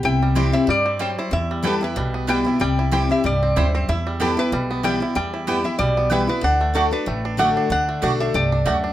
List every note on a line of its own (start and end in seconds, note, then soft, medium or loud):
0.03 0.51 C2 medium
0.03 0.65 C3 medium
0.03 0.54 E4 medium
0.03 0.51 G5 loud
0.23 0.68 G3 medium
0.35 0.53 E3 medium
0.35 0.53 G3 medium
0.35 0.46 C4 medium
0.35 0.53 C4 loud
0.35 0.46 E4 loud
0.35 0.51 E4 loud
0.35 1.65 G4 medium
0.35 0.46 C5 medium
0.35 0.46 G5 medium
0.52 0.68 C4 medium
0.52 0.67 E4 medium
0.52 1.18 E4 medium
0.52 0.67 E5 loud
0.67 0.98 G2 medium
0.67 1.15 G2 medium
0.67 1.00 G3 medium
0.67 1.01 D5 loud
0.86 1.29 C4 medium
0.99 1.30 F#3 medium
0.99 1.51 G3 medium
0.99 1.10 C4 medium
0.99 1.10 E4 loud
0.99 1.10 C5 loud
0.99 1.18 C5 medium
0.99 1.10 G5 loud
1.19 1.33 E4 medium
1.19 1.32 C5 medium
1.31 1.93 E2 medium
1.31 1.79 E2 medium
1.31 1.82 E4 medium
1.31 1.66 E5 loud
1.51 1.97 G3 medium
1.63 1.80 E3 loud
1.63 1.81 G3 medium
1.63 1.81 B3 medium
1.63 1.74 B3 medium
1.63 1.74 E4 loud
1.63 1.80 E4 medium
1.63 2.93 G4 medium
1.63 1.74 B4 loud
1.63 1.74 G5 loud
1.67 1.84 A4 medium
1.81 1.96 B3 soft
1.81 1.95 E4 medium
1.81 2.46 E4 medium
1.81 2.31 B4 loud
1.96 2.43 B1 medium
1.96 2.57 B2 medium
1.96 2.28 G3 medium
2.14 2.58 B3 medium
2.27 2.45 E3 medium
2.27 2.45 G3 medium
2.27 2.61 G3 medium
2.27 2.38 B3 loud
2.27 2.45 B3 medium
2.27 2.38 E4 medium
2.27 2.43 E4 medium
2.27 2.38 B4 loud
2.27 2.39 G5 loud
2.27 2.60 G5 loud
2.45 2.60 B3 soft
2.45 2.59 E4 medium
2.45 2.78 E4 medium
2.60 3.07 C2 medium
2.60 3.21 C3 medium
2.60 3.25 G3 medium
2.60 3.07 G5 loud
2.79 3.10 E4 medium
2.91 3.09 E3 medium
2.91 3.09 G3 medium
2.91 3.02 C4 loud
2.91 3.09 C4 medium
2.91 3.02 E4 loud
2.91 3.08 E4 loud
2.91 4.21 G4 medium
2.91 3.02 C5 loud
2.91 3.02 G5 loud
3.09 3.24 C4 soft
3.09 3.24 E4 medium
3.09 3.57 E4 medium
3.09 3.24 E5 loud
3.24 3.52 C2 medium
3.24 3.55 G2 medium
3.24 4.06 G3 medium
3.24 3.57 D5 loud
3.43 3.73 C4 medium
3.56 3.84 D2 medium
3.56 3.87 F#2 medium
3.56 3.66 C4 medium
3.56 3.66 E4 loud
3.56 3.89 E4 medium
3.56 3.66 C5 loud
3.56 3.73 C5 medium
3.56 3.66 G5 loud
3.75 3.89 C4 medium
3.75 3.89 C5 medium
3.89 4.49 E2 medium
3.89 4.35 E2 loud
3.89 4.38 E4 medium
3.89 4.18 E5 loud
4.07 4.50 G3 medium
4.20 4.37 E3 medium
4.20 4.37 G3 medium
4.20 4.30 B3 medium
4.20 4.37 B3 loud
4.20 4.30 E4 loud
4.20 4.36 E4 loud
4.20 4.67 G4 medium
4.20 4.37 A4 medium
4.20 4.30 B4 medium
4.20 4.30 G5 loud
4.37 4.52 B3 soft
4.37 4.51 E4 medium
4.37 4.82 E4 medium
4.37 4.86 B4 loud
4.52 4.99 B1 medium
4.52 5.13 B2 medium
4.52 4.84 G3 medium
4.71 5.14 B3 medium
4.83 5.00 E3 medium
4.83 5.01 G3 medium
4.83 5.15 G3 medium
4.83 4.93 B3 loud
4.83 5.00 B3 loud
4.83 4.94 E4 loud
4.83 4.99 E4 loud
4.83 4.94 B4 loud
4.83 5.15 G5 medium
4.83 4.94 G5 medium
5.00 5.16 B3 soft
5.00 5.15 E4 medium
5.00 5.32 E4 medium
5.15 5.77 E2 medium
5.15 5.62 E2 medium
5.15 5.62 G3 medium
5.15 5.67 G5 loud
5.34 5.64 E4 medium
5.47 5.64 E3 medium
5.47 5.64 G3 medium
5.47 5.57 B3 medium
5.47 5.64 B3 loud
5.47 5.57 E4 medium
5.47 5.63 E4 medium
5.47 5.94 G4 medium
5.47 5.58 B4 medium
5.47 5.58 G5 loud
5.64 5.79 B3 medium
5.64 5.79 E4 medium
5.64 6.09 E4 medium
5.64 5.78 E5 medium
5.79 6.26 B1 medium
5.79 6.40 B2 medium
5.79 6.26 G3 medium
5.79 6.09 D5 loud
5.97 6.28 B3 medium
6.10 6.27 E3 medium
6.10 6.28 G3 medium
6.10 6.28 B3 medium
6.10 6.21 B3 medium
6.10 6.26 E4 medium
6.10 6.44 E4 medium
6.10 6.21 E4 loud
6.10 6.21 B4 loud
6.10 6.28 B4 medium
6.10 6.22 G5 loud
6.27 6.43 B3 soft
6.27 6.44 B3 medium
6.27 6.42 E4 medium
6.27 6.44 B4 medium
6.41 6.90 D2 medium
6.41 6.72 D3 medium
6.41 6.75 D4 medium
6.41 6.77 F#5 loud
6.61 7.04 A3 medium
6.74 6.91 D3 medium
6.74 6.92 A3 medium
6.74 6.85 A3 medium
6.74 6.91 D4 medium
6.74 6.85 F#4 loud
6.74 6.90 F#4 medium
6.74 6.92 A4 medium
6.74 6.85 D5 loud
6.74 6.85 F#5 loud
6.91 7.07 D4 soft
6.91 7.24 D4 medium
6.91 7.06 F#4 medium
6.91 7.39 B4 medium
7.06 7.54 A1 medium
7.06 7.67 A2 medium
7.06 7.38 A3 medium
7.25 7.56 D4 medium
7.37 7.69 D3 medium
7.37 7.69 A3 medium
7.37 7.48 A3 medium
7.37 7.85 A3 medium
7.37 7.69 D4 medium
7.37 7.49 F#4 loud
7.37 7.69 F#4 medium
7.37 7.49 D5 loud
7.37 7.71 F#5 medium
7.37 7.49 F#5 loud
7.57 7.71 D4 medium
7.70 7.93 D2 medium
7.70 8.01 D3 medium
7.70 8.02 D4 medium
7.70 8.01 F#5 loud
7.89 8.32 A3 medium
8.02 8.30 B1 medium
8.02 8.33 D3 loud
8.02 8.12 A3 medium
8.02 8.33 A3 medium
8.02 8.33 D4 loud
8.02 8.20 D4 medium
8.02 8.12 F#4 medium
8.02 8.33 F#4 loud
8.02 8.12 D5 loud
8.02 8.13 F#5 loud
8.20 8.51 D4 medium
8.20 8.35 E5 medium
8.34 8.61 C2 medium
8.34 8.65 G2 medium
8.34 8.65 A3 medium
8.34 8.67 D5 loud
8.52 8.83 D4 medium
8.65 8.93 D2 medium
8.65 8.93 F#2 medium
8.65 8.76 A3 medium
8.65 8.93 A3 medium
8.65 8.76 F#4 loud
8.65 8.76 D5 loud
8.65 8.76 F#5 loud
8.65 8.93 F#5 medium
8.84 8.93 D4 medium